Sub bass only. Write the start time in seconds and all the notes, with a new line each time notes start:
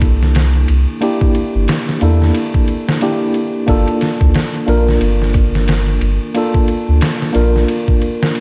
Already playing: C2
0.69 C2
1.55 G1
2.02 E2
3.68 G1
4.21 D2
4.68 A#1
5.01 G1
6.01 G1
6.89 D2
7.35 A#1